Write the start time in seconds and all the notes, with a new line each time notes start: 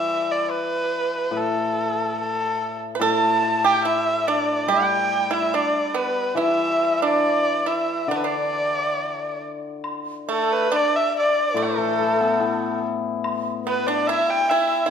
Already playing: E3 G3 E5
0.31 D5
0.45 D5
0.50 B4
1.31 A2
1.37 A4
2.21 A4
2.95 B4
3.00 A2 A4 A5
3.64 G4 G5
3.85 E4 E5
4.27 D4 D5
4.67 G3 G4 G5
5.31 E4 E5
5.54 D4 D5
5.89 D5
5.94 B3 B4
6.35 E3 E4
6.39 E5
6.97 E5
7.02 D4 D5
7.66 E4 E5
8.08 D3 D4 D5
8.16 B4
8.24 D4 D5
9.84 high woodblock
10.28 A3 A4
10.32 A4
10.53 B4
10.70 D4 D5
10.76 D5
10.94 E5
11.14 D5
11.20 D5
11.54 A2 A3 A4, high woodblock
11.63 A4
11.78 E3
12.00 A3
12.20 B3
12.40 E4, low woodblock
13.24 high woodblock
13.65 B3 B4
13.69 B4
13.87 D4 D5
14.07 E4 E5
14.30 G5
14.49 E4 E5
14.86 E4 E5